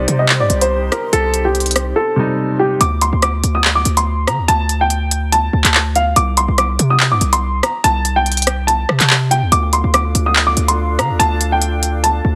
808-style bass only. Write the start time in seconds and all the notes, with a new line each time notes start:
0.08 C3
0.40 G2
0.50 C2
1.13 C2
2.81 D2
3.13 D2
3.44 D2
3.85 D2
4.27 D3
4.38 D2
4.48 D2
5.53 D2
5.64 D2
6.16 C2
6.48 C2
6.79 C3
7.11 G2
7.21 C2
7.84 C2
8.89 C3
9.00 C3
9.42 D#2
9.52 D2
9.84 D2
10.15 D2
10.57 D2
10.99 D3
11.10 D2
11.20 D2
12.25 D2